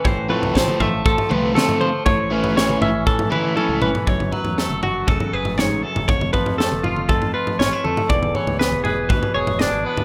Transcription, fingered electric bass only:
X:1
M:4/4
L:1/16
Q:1/4=119
K:F#m
V:1 name="Fingered electric bass" clef=bass
A,,, A,,, A,, =C,, A,,, z A,,,2 A,,, z C,,2 z4 | A,,,6 A,,,2 A,,2 z3 C,, G,,, z | F,,,2 z E,,2 F,,,3 E,,, z F,,,3 A,,, z F,,, | =F,,,2 z =F,,2 F,,,3 F,,2 z2 A,,, z F,, z |
E,,,2 z C,,2 E,,,3 D,, z E,,,3 G,,, z D,, |]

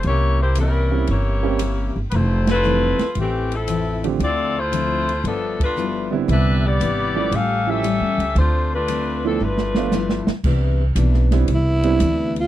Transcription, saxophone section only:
X:1
M:4/4
L:1/16
Q:"Swing" 1/4=115
K:C
V:1 name="Saxophone section"
[_B,EG_d]2 [B,EGc]2 [G,_DE_B]4 [B,EGd]6 z3/2 =B/2 | [A,EFc]2 [A,EFB]6 [E,A,CG]2 [F,CEA]4 z2 | [CFAd]2 [A,EFc]6 [F,B,DA]2 [A,DFB]4 z2 | [DGBe]2 [B,EGd]6 [^CGAf]2 [CGAe]6 |
[A,DFc]2 [A,DFB]4 [F,CDA]2 [A,DFB]6 z2 | z16 |]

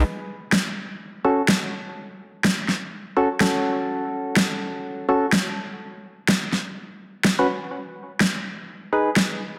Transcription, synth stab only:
X:1
M:4/4
L:1/16
Q:"Swing 16ths" 1/4=125
K:F#dor
V:1 name="Synth stab"
z8 z2 [CFA] z4 z | z8 z2 [CFA] z [CFA]4- | [CFA]8- [CFA]2 [CFA] z4 z | z12 z [CFB] z2 |
z8 z2 [DGB] z4 z |]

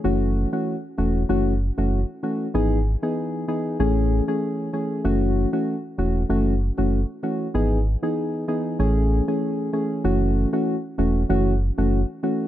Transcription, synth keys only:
X:1
M:4/4
L:1/16
Q:"Swing 16ths" 1/4=96
K:F#dor
V:1 name="Synth keys"
[E,A,CF]3 [E,A,CF] z2 [E,A,CF]2 [E,A,CF]2 z [E,A,CF] z2 [E,A,CF]2 | [E,B,DG]2 z [E,B,DG]3 [E,B,DG]2 [E,A,CG]3 [E,A,CG]3 [E,A,CG]2 | [E,A,CF]3 [E,A,CF] z2 [E,A,CF]2 [E,A,CF]2 z [E,A,CF] z2 [E,A,CF]2 | [E,B,DG]2 z [E,B,DG]3 [E,B,DG]2 [E,A,CG]3 [E,A,CG]3 [E,A,CG]2 |
[E,A,CF]3 [E,A,CF] z2 [E,A,CF]2 [E,A,CF]2 z [E,A,CF] z2 [E,A,CF]2 |]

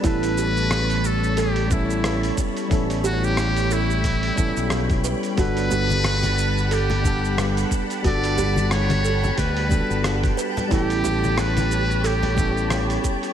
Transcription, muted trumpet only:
X:1
M:4/4
L:1/16
Q:"Swing 16ths" 1/4=90
K:Amix
V:1 name="Muted trumpet"
B6 A2 G2 E4 z2 | z2 F G3 E8 z2 | B8 G6 z2 | d4 c4 B6 z2 |
G4 B4 G6 z2 |]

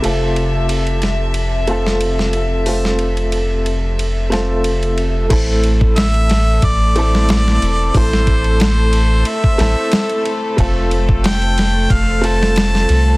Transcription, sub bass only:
X:1
M:4/4
L:1/8
Q:"Swing 16ths" 1/4=91
K:Am
V:1 name="Sub bass" clef=bass
F,,,8- | F,,,8 | A,,,4 A,,,3 E,,, | A,,,4 z A,,, z2 |
F,,,4 F,,,3 C,, |]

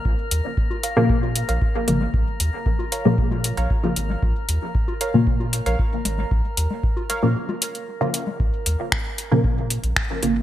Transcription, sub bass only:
X:1
M:4/4
L:1/16
Q:1/4=115
K:Bbm
V:1 name="Sub bass" clef=bass
B,,, z E,, z4 B,,4 B,,, z2 A,,,2 | B,,, z E,, z4 B,,4 B,,, z2 A,,,2 | B,,, z E,, z4 B,,4 B,,, z2 A,,,2 | B,,, z E,, z4 B,, z8 |
B,,, z E,, z4 B,,4 B,,, z2 A,,,2 |]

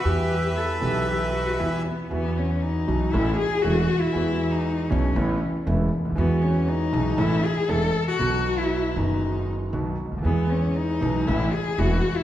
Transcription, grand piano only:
X:1
M:4/4
L:1/16
Q:1/4=118
K:Em
V:1 name="Grand piano" clef=bass
[E,,E,G,B,G]6 [B,,,B,,E,G,B,G]6 [E,,E,G,B,G]2 z2 | [K:E] [E,,E,F,B,F]6 [B,,,B,,E,F,B,F]2 [A,,,A,,E,A,CA]2 z2 [E,,,E,,E,A,CA]2 z2 | [E,,E,G,B,F]6 [B,,,B,,E,G,B,F]2 [A,,,A,,C,A,B,E]2 z2 [E,,,E,,C,A,B,E]2 z/2 C,,/2 =D,,/2 ^D,,/2 | [E,,E,G,B,F]6 [B,,,B,,E,G,B,F]2 [A,,,A,,E,A,CA]2 z2 [E,,,E,,E,A,CA]2 z2 |
[B,,,B,,F,B,F]6 [F,,,F,,D,F,B,F]6 [B,,,B,,D,F,B,F]2 z/2 C,,/2 =D,,/2 ^D,,/2 | [E,,E,G,B,G]6 [B,,,B,,E,G,B,G]2 [A,,,A,,C,E,A,E]2 z2 [E,,,E,,C,E,A,E]2 z2 |]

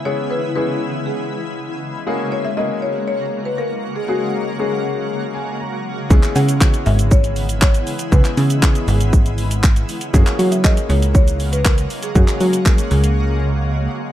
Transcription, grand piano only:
X:1
M:4/4
L:1/8
Q:1/4=119
K:F#mix
V:1 name="Grand piano"
[G,B,CEG]2 [G,B,CEG]3 z3 | [G,A,CFG]2 [G,A,CFG]3 z3 | [G,A,CFG]2 [G,A,CFG]3 g a2 | [G,B,CEG]2 [G,B,CEF]3 z3 |
[G,B,CEG]2 [G,B,CEG]3 z3 | [G,A,CFG]2 [G,A,CFG]3 z3 | [G,A,CFG]2 [G,A,CFG]3 z3 |]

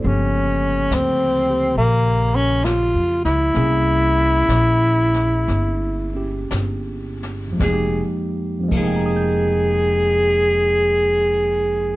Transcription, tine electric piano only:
X:1
M:4/4
L:1/8
Q:"Swing" 1/4=60
K:Fm
V:1 name="Tine electric piano"
=A z6 z | z8 | z2 [Begbe'g']6 |]
V:2 name="Tine electric piano"
[D,F,B,G]3 G4- G | [B,D=EA]4- [B,DEA] [DG]3 | [F,,F,A,B,EG] z [F,,F,A,B,EA]6 |]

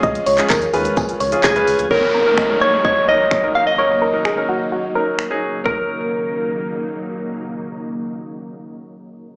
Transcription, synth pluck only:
X:1
M:4/4
L:1/16
Q:1/4=128
K:Ebm
V:1 name="Synth pluck"
e2 d2 B2 A z A2 d z4 z | d2 B2 e2 d z e2 d z d3 z | d2 B2 A2 G z G2 B z4 z | B12 z4 |
z16 |]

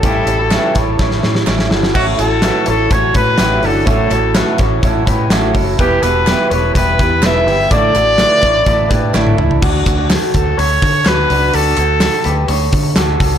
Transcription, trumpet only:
X:1
M:4/4
L:1/8
Q:1/4=125
K:D
V:1 name="Trumpet"
A4- A z3 | F A2 A c B2 A | A3 z4 z | G B2 B B2 e2 |
d6- d z | z3 A c2 B2 | A4 z4 |]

